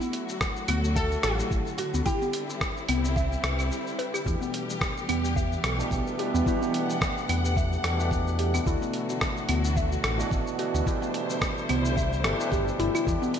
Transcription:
Already playing: D3 F#3 A3 E4 F#4
0.01 B3, shaker
0.13 closed hi-hat
0.29 shaker
0.41 kick, cross-stick, shaker
0.57 shaker
0.68 D2 B3 F#4, closed hi-hat, claves
0.84 shaker
0.96 A4 E5, kick, shaker
1.12 shaker
1.23 A1 E4 A4, cross-stick, closed hi-hat
1.40 shaker
1.51 A1, kick, shaker
1.67 shaker
1.78 F#4, closed hi-hat
1.94 D2 B3, shaker
2.06 G3 C4 E4 G4, kick, shaker
2.22 B3, shaker
2.33 closed hi-hat
2.50 shaker
2.61 kick, cross-stick, shaker
2.77 shaker
2.89 C2 B3, closed hi-hat, claves
3.05 shaker
3.16 E5, kick, shaker
3.32 shaker
3.43 C2 B4, cross-stick, closed hi-hat
3.59 claves, shaker
3.72 shaker
3.87 shaker
3.99 B4, closed hi-hat
4.14 G4, claves, shaker
4.24 E2 B2 E3 A3 B3 D4 E4 G4, kick, shaker
4.41 B3, shaker
4.54 closed hi-hat
4.70 shaker
4.81 kick, cross-stick, shaker
4.97 shaker
5.09 E2 B3, closed hi-hat, claves
5.25 shaker
5.36 E5, kick, shaker
5.52 shaker
5.64 B1 A4, cross-stick, closed hi-hat
5.78 B2 E3 A3 D4 G4, shaker
5.91 B1, kick, shaker
6.07 shaker
6.18 B2 E3 A3 D4 G4, closed hi-hat
6.34 E2 B3, shaker
6.44 B2 E3 A3 D4 E4 G4 F#5, kick, shaker
6.62 B3, shaker
6.74 closed hi-hat
6.90 shaker
7.01 kick, cross-stick, shaker
7.18 shaker
7.29 E2 B3, closed hi-hat, claves
7.45 shaker
7.56 E5, kick, shaker
7.73 shaker
7.83 E2 B2 E3 A3 D4 G4 A4, cross-stick, closed hi-hat
7.97 B2 E3 A3 D4 G4, shaker
8.11 kick, shaker
8.27 shaker
8.39 G4, closed hi-hat
8.54 B3, claves, shaker
8.64 D2 B2 D3 E3 F#3 A3 D4 E4 F#4, kick, shaker
8.82 B3, shaker
8.93 closed hi-hat
9.10 shaker
9.21 kick, cross-stick, shaker
9.37 shaker
9.49 D2 B3, closed hi-hat, claves
9.65 shaker
9.76 E5, kick, shaker
9.92 shaker
10.04 A1 A4, cross-stick, closed hi-hat
10.18 B2 E3 A3 D4 F#4, shaker
10.31 A1, kick, shaker
10.47 shaker
10.58 B2 E3 A3 D4 F#4, closed hi-hat
10.74 D2 B3, shaker
10.84 B2 D3 E3 G3 A3 D4 E4 C5, kick, shaker
10.88 G4
11.02 B3, shaker
11.14 closed hi-hat
11.30 shaker
11.41 kick, cross-stick, shaker
11.58 shaker
11.69 C2 B3, closed hi-hat, claves
11.85 shaker
11.97 E5, kick, shaker
12.13 shaker
12.23 G1 B2 E3 A3 D4 G4 A4, cross-stick, closed hi-hat
12.38 B2 E3 A3 D4, shaker
12.42 G4
12.52 G1 G4, kick, shaker
12.68 shaker
12.79 G1 E4, closed hi-hat
12.95 E4, claves, shaker
13.05 E2 B2 E3 G3 A3 B3 D4 E4 G4, kick, shaker
13.22 B3, shaker
13.34 closed hi-hat

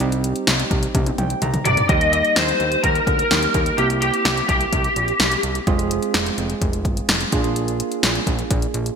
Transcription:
0.00 C2 G3 C4 D#4 G4, closed hi-hat
0.12 closed hi-hat
0.24 closed hi-hat
0.36 closed hi-hat
0.47 C2, snare, closed hi-hat
0.60 closed hi-hat
0.71 C2, kick, closed hi-hat
0.83 closed hi-hat
0.95 C2, kick, closed hi-hat, high tom
1.06 closed hi-hat, high tom
1.18 C2 G5, closed hi-hat, mid tom
1.30 closed hi-hat
1.42 C2 A#5, closed hi-hat, mid tom
1.54 closed hi-hat, mid tom
1.65 C2 D5, closed hi-hat, floor tom
1.77 closed hi-hat, floor tom
1.89 D#2 G3 A#3 D#4 G4 D#5, kick, closed hi-hat
2.01 closed hi-hat
2.13 D#5, closed hi-hat
2.25 closed hi-hat
2.36 D#2 C5, snare, closed hi-hat
2.49 closed hi-hat
2.60 D#2, closed hi-hat
2.72 closed hi-hat
2.84 D#2 A#4, kick, closed hi-hat
2.95 closed hi-hat
3.07 D2, kick, closed hi-hat
3.19 closed hi-hat
3.31 D#2 G3 A#3 D#4 G4, snare, closed hi-hat
3.43 closed hi-hat
3.54 D#2, kick, closed hi-hat
3.66 closed hi-hat
3.78 C2 A#3 C4 E4 G4, closed hi-hat
3.90 closed hi-hat
4.02 G4, closed hi-hat
4.14 closed hi-hat
4.25 C2, snare, closed hi-hat
4.37 closed hi-hat
4.49 C2 G4, kick, closed hi-hat
4.61 closed hi-hat
4.73 C2, kick, closed hi-hat
4.84 closed hi-hat
4.96 A#1, closed hi-hat
5.08 closed hi-hat
5.20 C2, snare, closed hi-hat
5.32 closed hi-hat
5.43 C2, closed hi-hat
5.55 closed hi-hat
5.67 F1 G#3 C4 F4 G#4, kick, closed hi-hat
5.79 closed hi-hat
5.91 closed hi-hat
6.03 closed hi-hat
6.14 F1, snare, closed hi-hat
6.26 closed hi-hat
6.38 F1, closed hi-hat
6.50 closed hi-hat
6.62 F1, kick, closed hi-hat
6.73 closed hi-hat
6.85 G1, kick, closed hi-hat
6.97 closed hi-hat
7.09 F1, snare, closed hi-hat
7.21 closed hi-hat
7.32 A#1 A#3 D4 F4 G#4, kick, closed hi-hat
7.44 closed hi-hat
7.56 closed hi-hat
7.68 closed hi-hat
7.80 closed hi-hat
7.92 closed hi-hat
8.03 A#1, snare, closed hi-hat
8.15 closed hi-hat
8.27 A#1, kick, closed hi-hat
8.39 closed hi-hat
8.51 A#1, kick, closed hi-hat
8.62 closed hi-hat
8.74 A#1, closed hi-hat
8.86 closed hi-hat

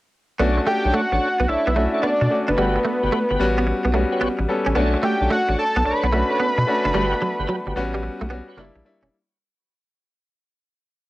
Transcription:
0.39 B1 A3 B3 C#4 D4 F#4 A4 C#5
0.58 muted clean electric guitar stroke
0.67 A3 G5
0.85 B1 D4 A4 C#5
0.94 A3 F#5
1.12 A1 D4 A4 C#5, muted clean electric guitar stroke
1.40 B1 B3
1.48 B1 D4 A4 C#5 E5, muted clean electric guitar stroke
1.67 B1 B3
1.76 A3 C#4 D4 F#4
1.94 D4 A4 C#5
2.02 B3 D5
2.21 B2, muted clean electric guitar stroke
2.30 A3 C#4 D4 F#4
2.48 F#1 D4 B4
2.57 G1 G3 A3 B3 D4 F#4 G4 B4
2.76 muted clean electric guitar stroke
2.85 A3
3.03 G1 F#4 G4 B4
3.12 A3
3.30 G1 F#4 G4 B4, muted clean electric guitar stroke
3.39 A1 G3 B3 C#4 F#4
3.58 B3
3.67 muted clean electric guitar stroke
3.85 B1 B3
3.94 G3 A3 B3 C#4 F#4
4.12 F#4 G4 B4 C#5
4.21 A1 B3
4.39 A1, muted clean electric guitar stroke
4.48 G3 B3 C#4 A4
4.66 A1 C#4
4.75 B1 A3 B3 C#4 D4 F#4 A4 C#5
4.94 muted clean electric guitar stroke
5.03 A3 G5
5.21 B1 D4 A4 C#5
5.30 A3 F#5
5.48 A1 D4 A4 C#5, muted clean electric guitar stroke
5.59 A5
5.76 B1 B3
5.85 B1 D4 A4 C#5 B5, muted clean electric guitar stroke
6.03 B1 B3
6.12 A3 C#4 D4 F#4
6.30 D4 A4 C#5
6.40 B3
6.58 B2, muted clean electric guitar stroke
6.67 A3 C#4 D4 F#4
6.85 F#1 D4
6.94 G1 G3 A3 B3 D4 F#4 G4 B4
7.13 muted clean electric guitar stroke
7.22 F#3
7.39 G1 F#4 G4 B4
7.49 F#3
7.66 G1 F#4 G4 B4, muted clean electric guitar stroke
7.76 A1 G3 B3 C#4 F#4
7.94 G3
8.03 muted clean electric guitar stroke
8.21 B1 A3
8.30 G3 B3 C#4 F#4
8.48 F#4 G4 B4 C#5
8.57 F#1 G3 A#3 D4 E4
8.76 A#1, muted clean electric guitar stroke
8.85 G3 A#3 D4 E4
9.03 E1 C#4

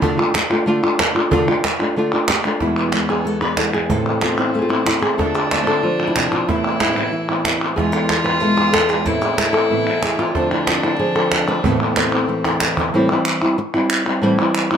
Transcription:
0.02 D3 A3 D4 F4, cajon bass
0.17 A3 D4 F4, cajon slap
0.34 muted nylon-string guitar stroke, cajon slap, clap
0.50 A3 D4 F4, cajon slap
0.66 D3 A3 D4 F4
0.83 A3 D4 F4, cajon slap
0.99 muted nylon-string guitar stroke, cajon slap, clap
1.15 A3 D4 F4, clap
1.31 D3 A3 D4 F4, cajon bass
1.48 A3 D4 F4, cajon slap
1.64 muted nylon-string guitar stroke, cajon slap, clap
1.79 A3 D4 F4, clap
1.96 D3 A3 D4 F4
2.12 A3 D4 F4, cajon slap
2.28 G4, muted nylon-string guitar stroke, cajon slap, clap
2.44 A3 D4 F4, clap
2.60 E2 B2 E3 G#3 B3 E4, cajon bass, cajon slap
2.77 F4
2.92 E3 G#3 B3 E4, cajon slap, clap
3.08 E3 G#3 B3 E4 G#4, clap
3.25 G#3 A4, muted nylon-string guitar stroke
3.41 E3 G#3 B3 E4 B4
3.57 E3 G#3 B3 E4 A4, cajon slap, clap
3.73 G#4, cajon slap, clap
3.89 A2 C3 E3 C4 E4 A4, cajon bass
4.06 cajon slap
4.21 E3 B3 C4 E4 F4, cajon slap, clap
4.38 E3 B3 C4 E4
4.54 A3 F4, muted nylon-string guitar stroke
4.59 F4 G#4
4.69 E3 B3 C4 E4
4.86 E3 C4 E4, cajon slap, clap
5.02 G#4, cajon slap, clap
5.18 D3 A3 C4 D4 F4 A4, cajon bass, cajon slap
5.34 G#4, cajon slap
5.51 D3 A3 C4 F4, cajon slap, clap
5.55 D3 A3 F4
5.59 D3 A3 C4 F4
5.63 D3 C4 F4 A4, clap
5.67 A3 C4 F4
5.83 F3 F4, muted nylon-string guitar stroke
5.99 A3 C4 F4
6.07 E4
6.15 C3 D3 A3 C4, cajon slap, clap
6.32 B2 F4, cajon slap, clap
6.48 A2 C3 E3 B3 C4 E4, cajon bass, cajon slap
6.65 cajon slap
6.80 C3 E3 B3 C4 E4, cajon slap, clap
6.84 C3 E3 C4 E4
6.88 C3 B3 E4
6.92 E3 B3 C4 E4, clap
6.97 A2 C3 E3 B3 C4 E4
7.12 E3, muted nylon-string guitar stroke
7.28 E3 B3 C4 E4
7.45 E3 B3 C4 E4, cajon slap, clap
7.61 clap
7.76 E2 B2 E3 G#3 B3 E4 F4 G#4, cajon bass, cajon slap
7.92 E3 G#3 B3 E4 A4
8.09 muted nylon-string guitar stroke, cajon slap, clap
8.24 E3 G#3 B3 E4 B4, clap
8.40 E2 B2 E3 G#3 B3 E4 A4
8.57 E3 G#3 B3 E4 G#4
8.73 A4, muted nylon-string guitar stroke, cajon slap, clap
8.89 E3 G#3 B3 E4 G#4, cajon slap, clap
9.05 A2 C3 E3 B3 C4 E4 A4, cajon bass, cajon slap
9.21 E3 B3 C4 E4 G#4
9.38 muted nylon-string guitar stroke, cajon slap, clap
9.53 E3 B3 C4 E4 A4, clap
9.70 A2 C3 E3 B3 C4 E4
9.86 E3 B3 C4 E4
10.02 G#4, muted nylon-string guitar stroke, cajon slap, clap
10.18 E3 B3 C4 E4 F4, clap
10.34 D3 F3 A3 C4 D4 F4, cajon bass, cajon slap
10.51 D3 A3 C4 E4 F4
10.67 A3 C4 F4, cajon slap, clap
10.83 A3 C4 E4 F4, clap
10.99 F3 G#4, muted nylon-string guitar stroke
11.15 A3 C4 F4 A4
11.32 cajon slap, clap
11.48 A3 C4 F4 B4, cajon slap, clap
11.63 A2 C3 E3 B3 C4 E4 A4, cajon bass
11.70 B3
11.78 E3 B3 C4 E4, cajon slap
11.96 E3 B3 C4 E4, cajon slap, clap
12.12 E3 B3 C4 E4
12.28 E3, muted nylon-string guitar stroke
12.44 E3 E4, cajon slap
12.60 cajon slap, clap
12.77 E3 B3 C4 E4, cajon bass, clap
12.94 A2 E3 G3 C4 E4
13.10 E3 G3 C4 E4
13.25 clap
13.42 G3 C4 E4, clap
13.58 muted nylon-string guitar stroke
13.74 G3 C4 E4
13.90 clap
14.06 G3 C4 E4, clap
14.22 A2 E3 G3 C4 E4
14.39 E3 G3 C4 E4
14.55 clap
14.71 G3 C4 E4, clap

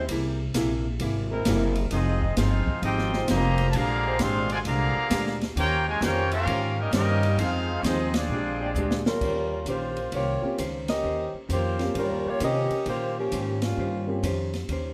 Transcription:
0.09 C2 C3 A#3 E4 G#4, ride
0.54 A#1 C3 A#3 E4 G#4, snare, hi-hat pedal, ride
1.00 G#1 C3 A#3 E4 G#4, ride
1.30 G#3 C4 E4 A#4
1.45 F#1 C3 A#3 E4 G#4, snare, hi-hat pedal, ride
1.75 ride
1.90 F1 F3 G#3 C4 D#4 F4 G#4 D#5, ride
1.95 G#4
2.22 kick
2.36 G1 F3 G#3 C4 D#4 F4 G#4 C5 F5, snare, hi-hat pedal, ride
2.67 muted upright bass stroke, kick
2.82 G#1 F3 C4 D#4 F4 G4 G#4 C5 D#5 G5, ride
2.99 snare
3.13 G#3 D#4 F4 C5, snare
3.28 F1 F3 A#3 C4 D#4 G4 G#4 C5 D#5 A#5, snare, hi-hat pedal, ride
3.58 ride
3.70 A5, ride
3.74 A#1 A#2 D3 F3 G#3 A#3 D4 G4 G#4 D5 F5 A#5
4.05 G#3 D4 G4 C5
4.19 G#1 A#2 F3 G#3 C4 D4 G4 G#4 D5 F5 C6, snare, hi-hat pedal, ride
4.50 D3 F3 G#3 F4 C5 D5 G#5, ride
4.65 C2 A#2 D3 F3 G#3 A#3 D4 G4 G#4 D5 F5 A#5, ride
4.96 muted upright bass stroke
5.10 D2 A#2 G#3 D4 G4, snare, hi-hat pedal, ride
5.27 snare
5.41 snare, ride
5.56 D#2 D#3 A#3 C#4 F4 G4 A#4 C5 C#5 G5, ride
5.87 G#3 F4 A#4 C#5 G#5
6.01 F2 D#3 G3 A#3 C#4 F4 G4 A#4 C5 C#5 G5, snare, hi-hat pedal, ride
6.32 A#3 C#4 F4 G4 A#4 F5, ride
6.46 G#2 D#3 C#4 G4, ride
6.50 C5
6.78 G3 A#3 C#4 D#4 G4 A#4 D#5
6.91 G2 D#3 G3 A#3 C#4 D#4 G4 A#4 C5 D#5, snare, hi-hat pedal, ride
7.23 ride
7.37 F2 F3 G#3 C4 D#4 F4 G#4 C5 F5, ride
7.81 D#2 F3 G#3 C4 D#4 F4 G#4 C5 C#5, snare, hi-hat pedal, ride
7.85 C4 D#4 G#4 D#5
8.14 F3 G#3 C4 D4 F4 G#4 D5, snare, ride
8.29 A#1 A#2 G#3 D4
8.34 G4
8.60 G#3 D4 G4 D5
8.74 D2 A#2 G#3 D4, hi-hat pedal
8.79 G4
8.91 snare
9.06 G3 C#4 F4 A#4, snare
9.21 D#2 D#3 C#4 G4 C5, kick, crash
9.66 A#1 D#3 A#3 C#4 F4 G4 C5, hi-hat pedal, ride
9.97 ride
10.12 C2 D#3 A#3 C#4 F4 G4 C5 C#5, ride
10.42 A#3 C4 C#4 F4 G4
10.58 C#2 D#3 C#4 G4 C5, hi-hat pedal, ride
10.88 C#4 G4 A#4 D#5, snare, ride
11.03 D#2 D#3 C#4 G4 C5
11.34 muted upright bass stroke
11.48 F2 D#3 A#3 C#4 F4 G4 C5, hi-hat pedal, ride
11.79 A#3 C4 C#4 F4 G4, snare, ride
11.95 G2 D#3 G3 C#4 F4 G4 A#4 C5, ride
12.10 D#2
12.26 C#2 A#3 F4 G4 C#5
12.40 C3 D#3 A#3 C4 C#4 F4 G4 A#4 C5 D#5, hi-hat pedal, ride
12.70 muted upright bass stroke, ride
12.86 A#2 D#3 A#3 C#4 F4 G4 C5, ride
13.19 F3 A#3 C#4 G4
13.32 G#2 D#3 C#4 G4 C5, hi-hat pedal, ride
13.62 G3 A#3 C#4 F4, snare, ride
13.77 G2 D#3 C#4 G4 C5
14.07 A#3 C4 C#4 F4 G4
14.23 F2 D#3 C#4 G4 C5, hi-hat pedal, ride
14.54 snare, ride
14.69 D#2 D#3 C#4 G4 C5, ride

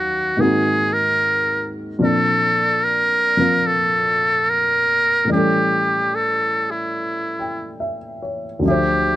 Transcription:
Already playing: D#2 D#3 F#3 C#4 F#4 F5
0.37 G#2 D#3 A#3 C4 G#4
0.42 F#4
0.93 A#4
1.99 A#2 F3 C4 D4
2.03 A4
2.84 A#4
3.37 F3 A#3 C4 F4
3.67 A4
4.50 A#4
5.25 A2 E3
5.30 G3 C#4 G4
5.36 A4
6.15 A4
6.71 E4
7.39 G5
7.80 E5
8.22 C#5
8.59 D2 D3
8.65 F3 G4 E5
8.71 C5

